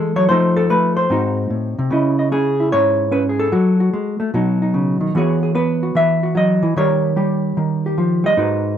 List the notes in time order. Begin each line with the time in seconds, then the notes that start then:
Already playing: E3 G#3 A3 E4 A4
0.16 F#3 C#5
0.29 F3 A3 D#4 A4 C5
0.57 A4
0.70 A3 B4
0.97 C5
1.10 G#2 C4 D#4 F#4
1.50 A2
1.79 C3
1.90 C#3 C#4 E4 D#5
2.19 D#5
2.32 C#4 G#4
2.60 E4
2.72 G#2 C#5
3.11 C#4 B4
3.29 G#4
3.39 A4
3.52 F#3 F#4
3.80 F#4
3.93 G#3
4.20 A3
4.34 B2 F#3 D#4
4.62 D#4
4.74 C#3
5.01 D#3
5.15 E3 B3 F#4 G#4 C#5
5.43 G#4
5.55 B3 B4
5.83 F#4
5.95 E3 E5
6.23 F#4
6.35 F#3 D#5
6.63 E3
6.76 D#3 G3 G4 A#4 C#5
7.16 G3 G4
7.57 D#3
7.86 G4
7.98 F3
8.24 G3 D#5
8.37 G#2 D#4 F#4 B4